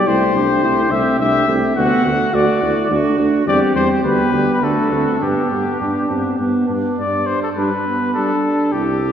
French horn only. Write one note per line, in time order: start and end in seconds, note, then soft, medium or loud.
0.08 0.35 A3 soft
0.35 0.63 A3 soft
0.64 0.92 A3 soft
0.92 1.20 A3 soft
1.21 1.47 A3 soft
1.48 1.76 A3 soft
1.76 2.05 A3 medium
2.06 2.33 A3 soft
2.34 2.62 A3 soft
2.63 2.90 A3 soft
2.91 3.19 A3 soft
3.20 3.46 A3 soft
3.47 3.74 G3 medium
3.75 4.03 G3 soft
4.04 4.32 G3 soft
4.32 4.61 G3 soft
4.61 4.90 A3 soft
4.91 5.20 A3 soft
5.21 5.50 B3 soft
5.51 5.79 B3 soft
5.80 6.09 B3 soft
6.10 6.39 B3 soft
6.40 6.69 B3 soft
6.69 6.98 B3 soft
7.57 7.73 G3 soft
8.15 8.31 G3 soft